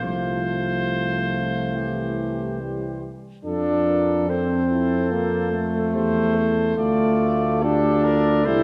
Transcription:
0.00 3.13 C2 soft
0.00 1.71 F3 medium
0.00 2.62 A3 medium
0.00 1.77 F4 medium
0.04 3.00 C5 medium
1.74 3.10 E3 soft
1.74 3.14 G4 soft
2.60 3.13 G3 soft
3.45 5.96 F2 medium
3.45 4.30 D4 medium
3.45 4.30 F4 medium
3.45 3.84 A4 medium
3.45 4.31 A4 medium
3.87 4.28 A#4 medium
4.29 5.13 C4 medium
4.29 4.70 A4 medium
4.29 5.91 A4 medium
4.29 5.95 C5 medium
4.71 5.13 E4 medium
5.12 5.52 A#3 medium
5.12 5.95 F4 medium
5.53 6.75 A3 medium
5.94 6.77 E2 medium
5.94 6.37 G4 medium
5.94 6.36 C5 medium
5.94 6.76 C5 medium
6.35 6.77 A4 medium
6.35 7.63 A4 medium
6.77 8.47 D2 medium
6.77 7.65 A3 medium
6.77 7.61 F4 medium
6.77 7.64 D5 medium
7.62 8.46 D4 loud
7.62 8.46 F4 medium
7.62 8.06 G4 medium
7.62 8.06 A4 medium
8.04 8.63 A4 medium
8.04 8.47 A#4 medium
8.45 8.63 C2 medium
8.45 8.63 E4 loud
8.45 8.63 G4 medium
8.45 8.63 C5 medium

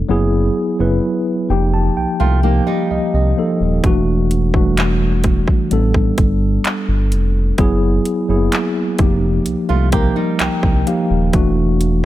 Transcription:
0.00 0.09 B3 medium
0.00 0.11 D4 medium
0.00 0.10 A4 medium
0.09 0.49 F#1 loud
0.09 0.56 F#3 loud
0.09 0.56 B3 medium
0.09 0.57 E4 medium
0.09 0.57 G#4 loud
0.79 0.99 F#1 medium
0.79 1.49 F#3 medium
0.79 1.50 B3 medium
0.79 1.50 E4 medium
0.79 1.50 B4 medium
1.49 1.90 F1 loud
1.49 2.24 F3 medium
1.49 2.25 A#3 medium
1.49 2.25 D#4 medium
1.49 2.25 G4 medium
1.49 1.72 G5 medium
1.74 1.95 A5 medium
1.96 2.06 C2 soft
1.96 2.18 G5 medium
2.20 2.60 C2 medium
2.20 2.42 A3 medium
2.20 2.42 F4 medium
2.20 2.42 G5 medium
2.43 3.06 F3 medium
2.43 2.66 A#3 medium
2.43 3.07 A#3 medium
2.43 3.07 D#4 medium
2.43 2.65 G4 medium
2.43 3.07 G4 medium
2.43 2.87 F5 medium
2.67 3.80 G3 medium
2.67 3.80 D#4 medium
2.90 2.99 C2 soft
2.90 3.12 D#5 medium
3.14 3.34 C2 medium
3.14 3.80 D#5 medium
3.37 3.68 F3 medium
3.37 3.69 A#3 medium
3.37 3.69 D#4 medium
3.37 3.69 A4 medium
3.60 3.80 D#1 loud
3.84 5.44 E1 loud
3.84 4.31 E3 loud
3.84 4.31 A3 medium
3.84 4.32 D4 medium
3.84 4.32 F#4 loud
3.84 kick loud
3.84 closed hi-hat medium
4.31 closed hi-hat medium
4.54 5.71 E3 medium
4.54 4.61 G3 medium
4.54 5.71 D4 medium
4.54 5.72 F#4 medium
4.54 kick medium
4.61 5.75 A3 medium
4.77 clap loud
4.77 closed hi-hat medium
5.24 kick medium
5.24 closed hi-hat medium
5.48 kick medium
5.71 6.11 A1 loud
5.71 7.21 G3 medium
5.71 7.21 B3 medium
5.71 7.22 D4 medium
5.71 7.22 A4 loud
5.71 closed hi-hat medium
5.94 kick medium
6.18 6.58 G1 medium
6.18 kick medium
6.18 closed hi-hat medium
6.65 clap loud
6.65 closed hi-hat medium
6.88 7.13 G1 medium
7.12 7.52 F1 medium
7.12 closed hi-hat medium
7.58 7.99 F#1 loud
7.58 8.06 F#3 loud
7.58 8.06 B3 medium
7.58 8.07 E4 medium
7.58 8.07 G#4 loud
7.58 kick loud
7.58 closed hi-hat medium
8.05 closed hi-hat medium
8.28 8.49 F#1 loud
8.28 8.99 F#3 medium
8.28 8.36 A#3 medium
8.28 9.00 E4 medium
8.28 9.00 G#4 medium
8.36 9.03 B3 medium
8.52 clap loud
8.52 closed hi-hat medium
8.98 9.39 F1 loud
8.98 9.74 F3 medium
8.98 9.74 A#3 medium
8.98 9.75 D#4 medium
8.98 9.75 G4 loud
8.98 kick loud
8.98 closed hi-hat medium
9.46 9.55 C2 soft
9.46 closed hi-hat medium
9.69 10.10 C2 medium
9.69 9.92 A3 medium
9.69 9.91 F4 medium
9.92 10.56 F3 medium
9.92 10.15 A#3 medium
9.92 10.56 A#3 medium
9.92 10.57 D#4 medium
9.92 10.15 G4 medium
9.92 10.57 A#4 medium
9.92 10.37 A#5 medium
9.92 kick medium
9.92 closed hi-hat medium
10.16 11.30 G3 medium
10.16 11.29 D#4 medium
10.39 10.49 C2 soft
10.39 10.84 G5 medium
10.39 clap loud
10.39 closed hi-hat medium
10.63 10.83 C2 medium
10.63 kick medium
10.86 11.18 F3 medium
10.86 11.18 A#3 medium
10.86 11.19 D#4 medium
10.86 11.19 G4 medium
10.86 11.31 F5 medium
10.86 closed hi-hat medium
11.10 11.30 D#1 loud
11.33 12.05 E1 medium
11.33 11.81 E3 loud
11.33 11.81 A3 loud
11.33 11.82 D4 medium
11.33 11.82 F#4 loud
11.33 kick loud
11.33 closed hi-hat medium
11.81 closed hi-hat medium

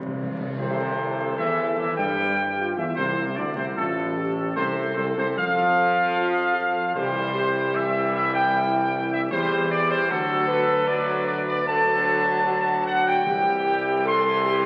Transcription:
0.00 0.13 C4 loud
0.00 0.12 C5 loud
0.06 0.13 C3 loud
0.14 0.21 C3 loud
0.23 0.29 C3 loud
0.30 0.37 C3 loud
0.39 0.44 C3 loud
0.46 0.52 C3 loud
0.57 1.34 C2 loud
0.57 1.34 C3 loud
0.57 2.15 A4 loud
0.57 1.34 C5 loud
0.57 tam-tam medium
1.38 1.75 E2 medium
1.38 1.75 E3 loud
1.38 1.75 E5 loud
1.77 1.87 E2 loud
1.77 1.97 E3 loud
1.77 1.96 E5 loud
1.97 2.74 G2 loud
1.97 2.74 G3 loud
1.97 2.73 G5 loud
2.19 2.58 G4 medium
2.60 2.96 F4 medium
2.76 2.96 E2 loud
2.76 2.85 E3 medium
2.76 2.98 E5 loud
2.96 3.39 C2 loud
2.96 3.34 C3 loud
2.96 3.73 E4 medium
2.96 3.33 C5 loud
3.36 3.58 D2 loud
3.36 3.55 D3 loud
3.36 3.56 D5 loud
3.54 3.78 C2 medium
3.54 3.74 C3 medium
3.54 3.65 C5 loud
3.75 4.56 A1 loud
3.75 4.51 A2 loud
3.75 4.14 F4 medium
3.75 4.51 A4 loud
4.17 4.54 G4 loud
4.55 4.94 C2 loud
4.55 4.93 C3 loud
4.55 6.12 A4 loud
4.55 4.93 C5 loud
4.96 5.16 C2 loud
4.96 5.05 C3 loud
4.96 5.05 C5 loud
5.16 5.36 C2 loud
5.16 5.35 C3 loud
5.16 5.27 C5 loud
5.36 6.91 F2 loud
5.36 6.94 F3 loud
5.36 6.91 F5 loud
6.16 6.53 F4 medium
6.55 6.95 A4 loud
6.95 9.33 C2 loud
6.95 8.09 C3 loud
6.95 7.70 E3 loud
6.95 7.70 G3 loud
6.95 7.32 G4 loud
6.95 7.74 C5 loud
7.34 8.36 G4 loud
7.73 9.28 E3 loud
7.73 9.28 G3 loud
7.73 8.13 E5 loud
8.14 8.32 E5 loud
8.34 9.08 G5 loud
8.53 9.28 E4 loud
9.12 9.21 E5 loud
9.31 9.94 E2 loud
9.31 10.06 E3 loud
9.31 10.06 G3 loud
9.31 10.06 G4 loud
9.31 9.68 C5 loud
9.71 9.89 D5 loud
9.91 10.09 C5 loud
10.09 13.22 D2 loud
10.09 10.87 D3 loud
10.09 10.87 F#3 loud
10.09 10.48 F#4 loud
10.09 10.88 A4 loud
10.47 11.64 B4 loud
10.87 11.51 D3 loud
10.87 11.51 F#3 loud
10.87 11.25 D5 loud
11.26 11.36 D5 loud
11.48 11.67 D5 loud
11.67 13.22 D3 loud
11.67 13.22 F#3 loud
11.67 12.47 A4 loud
11.67 12.82 A5 loud
12.46 13.21 F#4 loud
12.86 13.05 F#5 loud
13.07 14.03 G5 loud
13.25 14.66 C2 loud
13.25 14.43 C3 loud
13.25 14.66 E3 loud
13.25 14.66 G3 loud
13.25 14.06 G4 loud
14.06 14.43 A4 loud
14.06 14.66 C6 loud
14.46 14.66 G4 loud

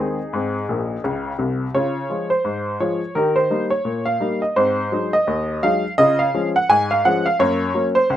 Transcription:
0.00 0.17 D#3 soft
0.00 0.18 G#3 soft
0.00 0.18 C4 soft
0.00 1.01 D#4 medium
0.00 1.00 G#4 medium
0.33 0.63 G#2 medium
0.33 0.54 C4 soft
0.69 0.95 A#1 medium
0.69 0.95 A#2 medium
1.04 1.31 C#2 medium
1.04 1.31 C#3 medium
1.39 1.66 C2 medium
1.39 1.65 C3 medium
1.75 2.05 C#3 medium
1.75 1.96 F4 soft
1.75 2.28 C#5 medium
2.10 2.29 F3 soft
2.10 2.29 G#3 soft
2.10 2.30 F4 soft
2.30 2.78 C5 medium
2.45 2.75 G#2 medium
2.80 3.00 F3 soft
2.80 3.00 G#3 soft
2.80 3.00 F4 soft
2.80 3.14 C#5 medium
3.15 3.46 D#3 medium
3.15 3.36 G4 soft
3.15 3.36 A#4 medium
3.36 3.64 C5 medium
3.50 3.70 G3 soft
3.50 3.70 A#3 soft
3.50 3.70 D#4 soft
3.70 4.04 C#5 medium
3.85 4.15 A#2 medium
4.06 4.40 F5 medium
4.20 4.40 G3 soft
4.20 4.40 A#3 soft
4.20 4.41 D#4 soft
4.42 4.57 D#5 medium
4.56 4.87 G#2 medium
4.56 4.77 C4 soft
4.56 5.10 C5 medium
4.92 5.11 F#3 soft
4.92 5.12 G#3 soft
4.92 5.12 D#4 soft
5.13 5.61 D#5 medium
5.27 5.57 D#2 medium
5.63 5.83 F#3 soft
5.63 5.83 G#3 soft
5.63 5.83 D#4 soft
5.63 5.91 F5 medium
5.98 6.28 C#3 medium
5.98 6.19 F4 soft
5.98 6.19 D#5 loud
6.19 6.47 F5 medium
6.34 6.54 F3 soft
6.34 6.54 G#3 soft
6.34 6.54 C#4 medium
6.56 6.70 F#5 medium
6.69 6.99 G#2 medium
6.69 6.90 G#5 loud
6.91 7.05 F5 medium
7.05 7.24 F3 soft
7.05 7.25 G#3 soft
7.05 7.25 C#4 soft
7.05 7.25 F#5 medium
7.26 7.40 F5 medium
7.40 7.69 F#2 medium
7.40 7.61 A#3 medium
7.40 7.84 C#5 medium
7.74 7.94 F#3 soft
7.74 7.94 A#3 soft
7.74 7.95 C#4 soft
7.95 8.17 C5 medium
8.10 8.17 C#2 medium

